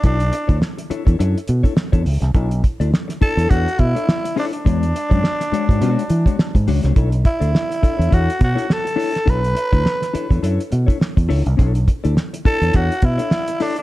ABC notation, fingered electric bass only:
X:1
M:4/4
L:1/16
Q:"Swing 16ths" 1/4=104
K:Bdor
V:1 name="Fingered electric bass" clef=bass
B,,,2 z D,, z3 E,, F,, z B,, z2 E,, C,, =C,, | B,,,2 z D,, z3 E,, E,, z B,, z4 z | E,,2 z F,, z3 G,, B,, z E, z2 G,, C,, =C,, | B,,,2 z D,, z3 E,, E,, z B,, z4 z |
B,,,2 z D,, z3 E,, F,, z B,, z2 E,, C,, =C,, | B,,,2 z D,, z3 E,, E,, z B,, z4 z |]